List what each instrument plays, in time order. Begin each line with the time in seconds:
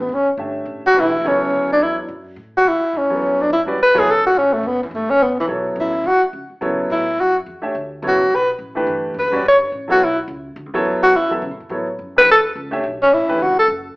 0.00 tenor saxophone B3
0.09 upright bass F#1
0.14 tenor saxophone C#4
0.37 upright bass G1, grand piano A3 D4 G4 C#5 E5
0.65 upright bass A1
0.86 tenor saxophone F#4
0.94 upright bass B1, grand piano E3 A3 D4 G4 B4
1.00 tenor saxophone E4
1.22 upright bass C#2, grand piano F#3 B3 E4
1.26 tenor saxophone C#4, grand piano A4 C#5
1.50 upright bass D2
1.72 tenor saxophone D4
1.80 upright bass E2, tenor saxophone E4
2.08 upright bass F#2
2.36 upright bass A2
2.57 tenor saxophone F#4
2.65 upright bass F#2, tenor saxophone E4
2.81 muted upright bass stroke
2.93 upright bass E2
2.97 tenor saxophone C#4
3.10 grand piano F#3 B3 E4 A4 C#5
3.21 upright bass G2
3.41 tenor saxophone D4
3.50 upright bass F#2, tenor saxophone E4
3.66 grand piano G3 C#4 F#4 B4 D5
3.78 upright bass E2
3.82 tenor saxophone B4
3.94 grand piano F#3 B3 E4 A4 C#5
3.99 tenor saxophone G#4
4.07 upright bass C#2, tenor saxophone A4
4.26 tenor saxophone F#4
4.35 upright bass A1, tenor saxophone C#4
4.53 tenor saxophone A3
4.63 upright bass F#1, tenor saxophone B3
4.83 tenor saxophone E3
4.91 upright bass G1, tenor saxophone A3
5.10 tenor saxophone C#4
5.19 upright bass A1, tenor saxophone B3
5.40 tenor saxophone E3
5.47 upright bass B1, grand piano F#3 B3 E4 A4 C#5
5.76 upright bass A1
5.80 tenor saxophone E4
6.04 upright bass E2, tenor saxophone F#4
6.21 muted upright bass stroke
6.33 upright bass C#2
6.50 muted upright bass stroke
6.61 upright bass C#3, grand piano F#3 B3 E4 A4 C#5
6.90 upright bass A2, tenor saxophone E4
7.17 upright bass F#2, tenor saxophone F#4
7.46 upright bass E2
7.62 grand piano A3 D4 G4 C#5 E5
7.75 upright bass D2
8.02 upright bass C#2, grand piano F#3 B3 E4 A4 C#5
8.07 tenor saxophone F#4
8.30 upright bass B1
8.35 tenor saxophone B4
8.59 upright bass A1
8.75 grand piano E3 A3 D4 G4 B4
8.87 upright bass G1
9.14 upright bass F#1
9.19 tenor saxophone B4
9.31 grand piano G3 C#4 F#4 B4 D5
9.43 upright bass G1
9.48 tenor saxophone C#5
9.72 upright bass A1
9.88 grand piano F#3 B3 E4 A4 C#5, tenor saxophone F#4
10.00 upright bass B1
10.04 tenor saxophone E4
10.28 upright bass C#2
10.56 upright bass D2
10.66 upright bass C#2
10.74 upright bass A1, grand piano F#3 B3 E4 A4 C#5
10.85 upright bass E2
11.03 tenor saxophone F#4
11.13 upright bass F#2, tenor saxophone E4
11.30 grand piano F#3 B3 E4 A4 E5
11.42 upright bass C#3
11.51 upright bass A2
11.60 upright bass F#2
11.69 upright bass A2, grand piano F#3 B3 E4 A4 C#5
11.99 upright bass F#2
12.16 grand piano E3 A3 D4 G4 B4, tenor saxophone B4
12.27 upright bass E2
12.31 tenor saxophone A4
12.55 upright bass C#2
12.71 grand piano A3 D4 G4 C#5 E5
12.83 upright bass B1
13.02 tenor saxophone C#4
13.11 upright bass A1, tenor saxophone E4
13.28 grand piano E3 A3 D4 G4 B4
13.39 upright bass C#2, tenor saxophone F#4
13.59 tenor saxophone A4
13.68 upright bass F#1